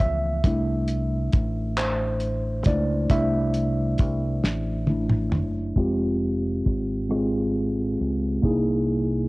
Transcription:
0.00 C#2 E5, kick
0.44 C2 A3 D4 E4, kick, closed hi-hat
0.88 closed hi-hat
1.32 A1, kick, closed hi-hat
1.77 C5, clap, closed hi-hat
2.20 closed hi-hat
2.64 C#2 A3 D4 E4 D5, kick, closed hi-hat
3.10 C2 A3 D4 E4 E5, kick, closed hi-hat
3.54 closed hi-hat
3.98 C2, kick, closed hi-hat
4.44 A1, snare
4.87 A3 D4 E4, high tom
5.10 mid tom
5.32 F#1, mid tom
5.76 F1 G#3 C4 F4 G4, kick, closed hi-hat
6.66 G#1, kick, closed hi-hat
7.09 G#3 C4 F4 G#4, cross-stick, closed hi-hat
7.98 C#2, closed hi-hat
8.42 C2 A#3 D#4 E4 G#4, kick, closed hi-hat

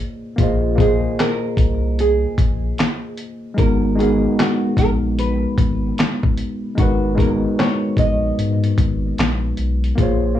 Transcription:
0.36 A#1 A#3 F4 G#4, kick, closed hi-hat
0.40 F4 C5 D#5
0.75 A#3 F4 G#4, kick
0.80 G#4 C5 D#5, closed hi-hat
1.19 A#4, snare, clap, closed hi-hat
1.57 C2, kick, closed hi-hat
1.99 G#4, closed hi-hat
2.38 A#1, kick, closed hi-hat
2.78 snare, clap, closed hi-hat
3.18 closed hi-hat
3.54 G#1 G#3 D#4 F#4, kick, closed hi-hat
3.59 B3 A#4
3.95 G#3 D#4 F#4 G#4
4.00 B3 A#4, closed hi-hat
4.39 F#4, snare, clap, closed hi-hat
4.77 A#1 A#4, kick, closed hi-hat
5.19 B4, closed hi-hat
5.58 G#1, kick, closed hi-hat
5.98 snare, clap, closed hi-hat
6.23 kick
6.37 closed hi-hat
6.75 G#1 G#3 D#4 F#4, kick, closed hi-hat
6.81 A#4 B4
7.15 G#3 D#4 F#4 A#4, kick
7.20 B3 A#4, closed hi-hat
7.59 C#5, snare, clap, closed hi-hat
7.97 A#1 D#5, kick, closed hi-hat
8.38 G#2, closed hi-hat
8.64 closed hi-hat
8.78 G#1, kick, closed hi-hat
9.18 A#1, snare, clap, closed hi-hat
9.57 B1, closed hi-hat
9.84 closed hi-hat
9.95 A#1 A#3 F4 G#4, kick, closed hi-hat
10.00 F4 C5 C#5
10.35 A#3 F4

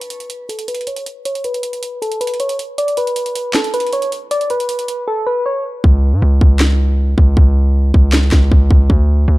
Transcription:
Already playing: B4
0.01 closed hi-hat
0.10 closed hi-hat
0.20 closed hi-hat
0.30 closed hi-hat
0.49 A4, closed hi-hat
0.59 closed hi-hat
0.68 B4, closed hi-hat
0.75 closed hi-hat
0.81 closed hi-hat
0.87 C#5, closed hi-hat
0.96 closed hi-hat
1.06 closed hi-hat
1.25 C#5, closed hi-hat
1.35 closed hi-hat
1.44 B4, closed hi-hat
1.54 closed hi-hat
1.63 closed hi-hat
1.73 closed hi-hat
1.83 closed hi-hat
2.02 A4, closed hi-hat
2.12 closed hi-hat
2.21 B4, closed hi-hat
2.27 closed hi-hat
2.34 closed hi-hat
2.40 C#5, closed hi-hat
2.49 closed hi-hat
2.59 closed hi-hat
2.78 D5, closed hi-hat
2.88 closed hi-hat
2.97 B4, closed hi-hat
3.07 closed hi-hat
3.16 closed hi-hat
3.26 closed hi-hat
3.35 closed hi-hat
3.54 A4, snare, clap, closed hi-hat
3.64 closed hi-hat
3.74 B4, closed hi-hat
3.80 closed hi-hat
3.87 closed hi-hat
3.93 C#5, closed hi-hat
4.02 closed hi-hat
4.12 closed hi-hat
4.31 D5, closed hi-hat
4.41 closed hi-hat
4.50 B4, closed hi-hat
4.60 closed hi-hat
4.69 closed hi-hat
4.79 closed hi-hat
4.88 closed hi-hat
5.08 A4
5.27 B4
5.46 C#5
5.84 C#2, kick
6.13 G#2
6.22 C#2
6.41 C#2, kick
6.60 snare, clap
7.18 C#2, kick
7.37 C#2, kick
7.94 C#2, kick
8.13 snare, clap
8.32 C#2, kick, snare, clap
8.52 C#2, kick
8.71 C#2, kick
8.90 D2, kick
9.28 D2

